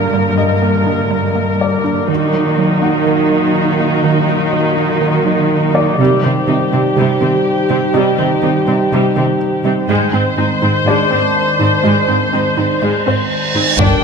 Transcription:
0.00 2.05 G2 soft
0.00 2.05 D3 soft
0.00 2.05 G3 medium
0.00 2.05 A#3 medium
0.00 2.05 A#4 soft
0.00 2.05 A#4 medium
0.00 0.34 D5 soft
0.13 0.28 G3 medium
0.38 0.52 A#3 medium
0.38 1.80 D#5 soft
0.62 0.77 A#3 soft
0.87 1.01 D4 soft
1.11 1.25 G3 medium
1.35 1.50 A#3 soft
1.61 3.03 D5 soft
1.84 1.99 D4 soft
2.08 2.23 D#3 medium
2.08 5.95 D#3 soft
2.08 5.99 F#3 medium
2.08 5.95 A#3 medium
2.08 5.95 D#4 soft
2.08 5.98 D#4 medium
2.08 5.95 F#4 soft
2.08 5.95 A#4 medium
2.33 2.48 F#3 soft
2.58 2.73 F#3 medium
2.82 2.97 A#3 soft
2.82 4.24 F#5 soft
3.06 3.21 D#3 medium
3.31 3.46 F#3 soft
3.80 3.94 A#3 soft
4.04 4.19 D#3 medium
4.28 4.43 F#3 soft
4.53 4.68 F#3 soft
4.77 4.92 A#3 soft
5.01 5.16 D#3 medium
5.26 5.41 F#3 soft
5.74 5.89 A#3 soft
5.74 7.17 D5 soft
5.99 6.07 C3 soft
5.99 6.13 C3 medium
5.99 9.89 G3 medium
5.99 6.22 G3 medium
5.99 9.90 D#4 medium
5.99 9.85 G4 soft
5.99 9.88 C5 medium
5.99 9.86 G5 medium
6.23 6.32 C3 soft
6.23 6.38 D#3 soft
6.23 6.32 C4 soft
6.48 6.56 C3 soft
6.48 6.62 D#3 soft
6.48 6.56 D#4 soft
6.72 6.81 C3 soft
6.72 6.86 G3 soft
6.72 6.81 C4 soft
6.96 7.11 C3 medium
6.96 7.05 C3 medium
6.96 7.20 G3 soft
7.21 7.29 C3 soft
7.21 7.36 D#3 medium
7.21 7.30 C4 soft
7.70 7.78 C3 soft
7.70 7.85 G3 soft
7.70 7.78 C4 soft
7.94 8.09 C3 medium
7.94 8.02 C3 medium
7.94 8.17 G3 medium
7.94 9.37 D#4 soft
7.94 9.36 D#5 soft
8.18 8.26 C3 soft
8.18 8.33 D#3 medium
8.18 8.26 C4 soft
8.43 8.51 C3 soft
8.43 8.58 D#3 soft
8.43 8.51 D#4 soft
8.67 8.75 C3 soft
8.67 8.82 G3 soft
8.67 8.75 C4 soft
8.92 9.00 C3 medium
8.92 9.07 C3 medium
8.92 9.15 G3 medium
9.16 9.24 C3 soft
9.16 9.31 D#3 medium
9.16 9.24 C4 soft
9.65 9.73 C3 soft
9.65 9.80 G3 soft
9.65 9.73 C4 soft
9.89 9.97 G#2 soft
9.89 13.76 D#3 medium
9.89 10.04 G#3 medium
9.89 13.80 G#3 medium
9.89 10.12 G#3 medium
9.89 13.75 C5 medium
9.89 13.60 C5 medium
10.13 10.22 G#2 soft
10.13 10.28 C4 medium
10.13 10.22 C4 soft
10.38 10.46 G#2 soft
10.38 10.53 C4 medium
10.38 10.47 D#4 soft
10.62 10.71 G#2 soft
10.62 10.71 C4 soft
10.62 10.77 D#4 soft
10.86 10.95 G#2 medium
10.86 11.01 G#3 medium
10.86 11.10 G#3 medium
10.86 12.30 D4 soft
10.86 12.30 D5 soft
11.11 11.19 G#2 soft
11.11 11.25 C4 medium
11.11 11.20 C4 soft
11.59 11.68 G#2 soft
11.59 11.69 C4 soft
11.59 11.74 D#4 soft
11.83 11.92 G#2 soft
11.83 11.98 G#3 medium
11.83 12.07 G#3 soft
11.83 reverse cymbal soft
12.08 12.17 G#2 soft
12.08 12.23 C4 soft
12.08 12.17 C4 soft
12.33 12.41 G#2 soft
12.33 12.48 C4 soft
12.33 12.41 D#4 soft
12.57 12.66 G#2 soft
12.57 12.66 C4 soft
12.57 12.72 D#4 medium
12.82 12.90 G#2 soft
12.82 12.96 G#3 medium
12.82 13.05 G#3 soft
13.06 13.15 G#2 soft
13.06 13.21 C4 soft
13.06 13.15 C4 soft
13.06 13.76 C5 soft
13.55 13.63 G#2 soft
13.55 13.64 C4 soft
13.55 13.70 D#4 soft
13.79 13.87 G1 medium
13.79 13.87 G2 soft
13.79 13.95 G2 medium
13.79 14.04 D3 soft
13.79 14.04 D3 medium
13.79 13.94 G3 medium
13.79 14.04 A#3 medium
13.79 14.02 D4 medium
13.79 14.03 D4 medium
13.79 14.04 G4 medium
13.79 14.04 A#4 soft
13.79 14.04 D5 soft
13.79 14.04 G5 soft
13.79 14.04 G5 medium
13.79 taiko medium
13.79 impact soft

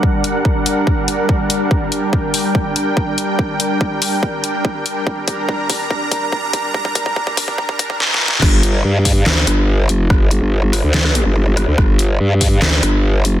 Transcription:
0.00 8.38 G3 medium
0.00 8.38 D4 medium
0.00 8.38 A#4 medium
0.00 1.70 F#5 medium
0.00 kick loud
0.24 closed hi-hat medium
0.45 kick medium
0.66 closed hi-hat medium
0.87 kick loud
1.08 closed hi-hat medium
1.29 kick loud
1.50 closed hi-hat medium
1.71 5.05 G5 medium
1.71 kick loud
1.92 closed hi-hat medium
2.13 kick loud
2.34 open hi-hat medium
2.55 kick loud
2.76 closed hi-hat medium
2.97 kick loud
3.18 closed hi-hat medium
3.39 kick loud
3.60 closed hi-hat medium
3.81 kick loud
4.02 open hi-hat loud
4.23 kick loud
4.44 closed hi-hat medium
4.65 kick loud
4.86 closed hi-hat medium
5.07 8.41 A#5 medium
5.07 kick loud
5.28 kick loud
5.28 closed hi-hat medium
5.49 kick loud
5.70 kick loud
5.70 open hi-hat loud
5.91 kick loud
6.11 kick loud
6.11 closed hi-hat medium
6.32 kick loud
6.53 kick loud
6.53 closed hi-hat medium
6.74 kick loud
6.85 kick medium
6.95 kick loud
6.95 closed hi-hat medium
7.06 kick medium
7.16 kick loud
7.27 kick medium
7.37 kick loud
7.37 open hi-hat loud
7.48 kick medium
7.58 kick loud
7.69 kick loud
7.79 kick loud
7.79 closed hi-hat medium
7.90 kick loud
8.00 snare medium
8.14 snare medium
8.28 snare loud
8.42 8.83 G1 loud
8.42 kick loud
8.42 cross-stick medium
8.42 crash loud
8.63 closed hi-hat medium
8.84 9.25 G2 loud
9.05 kick medium
9.05 open hi-hat medium
9.26 9.46 D2 loud
9.26 snare loud
9.26 clap loud
9.47 9.90 G1 medium
9.47 cross-stick medium
9.47 closed hi-hat medium
9.89 10.08 F#1 medium
9.89 closed hi-hat medium
10.10 10.40 G1 loud
10.10 kick loud
10.10 cross-stick medium
10.31 closed hi-hat medium
10.42 10.82 G1 loud
10.73 cross-stick medium
10.73 open hi-hat medium
10.84 11.24 D2 loud
10.94 snare loud
10.94 clap medium
11.05 cross-stick medium
11.15 closed hi-hat medium
11.26 11.66 G1 loud
11.57 cross-stick medium
11.57 closed hi-hat medium
11.68 11.76 D2 medium
11.78 12.18 G1 loud
11.78 kick loud
11.78 cross-stick medium
11.99 closed hi-hat medium
12.20 12.60 G2 loud
12.41 kick medium
12.41 open hi-hat medium
12.62 12.81 D2 loud
12.62 snare loud
12.62 clap loud
12.83 13.26 G1 loud
12.83 cross-stick medium
12.83 closed hi-hat medium
13.25 13.40 F#1 loud
13.25 closed hi-hat medium

